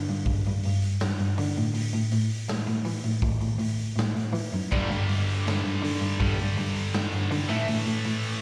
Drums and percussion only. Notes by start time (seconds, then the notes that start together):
0.08 open hi-hat
0.26 kick, open hi-hat
0.45 open hi-hat
0.63 open hi-hat
0.82 open hi-hat
1.00 snare, open hi-hat
1.19 open hi-hat
1.38 open hi-hat
1.56 open hi-hat
1.75 open hi-hat
1.93 open hi-hat
2.12 open hi-hat
2.30 open hi-hat
2.48 snare, open hi-hat
2.67 open hi-hat
2.85 open hi-hat
3.04 open hi-hat
3.22 kick, open hi-hat
3.41 open hi-hat
3.59 open hi-hat
3.78 open hi-hat
3.98 snare, open hi-hat
4.16 open hi-hat
4.35 open hi-hat
4.53 open hi-hat
4.72 kick, crash
4.91 open hi-hat
5.09 open hi-hat
5.28 open hi-hat
5.47 snare, open hi-hat
5.65 open hi-hat
5.84 open hi-hat
6.02 open hi-hat
6.20 kick, open hi-hat
6.39 open hi-hat
6.57 open hi-hat
6.75 open hi-hat
6.94 snare, open hi-hat
7.12 open hi-hat
7.31 open hi-hat
7.49 open hi-hat
7.68 open hi-hat
7.86 open hi-hat
8.04 open hi-hat
8.23 open hi-hat